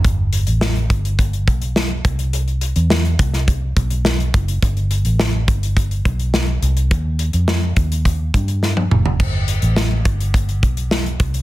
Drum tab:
CC |----------------|----------------|----------------|----------------|
HH |x-xx-xxxxxxx--xx|xxxx-xxxx-xx-xxx|xxxx--xxxxxx--xx|x-xx--xxx-xx----|
SD |----o-------o---|----o--o----o---|----o-------o---|----o-------o---|
T1 |----------------|----------------|----------------|-------------o--|
T2 |----------------|----------------|----------------|--------------o-|
FT |----------------|----------------|----------------|---------------o|
BD |o-----o-o-o---o-|------o-o-o---o-|o-----o-o-o-----|o-----o-o-o-----|

CC |x---------------|
HH |--xx--xxxxxx-xxx|
SD |----o-------o---|
T1 |----------------|
T2 |----------------|
FT |----------------|
BD |o-----o-o-o---o-|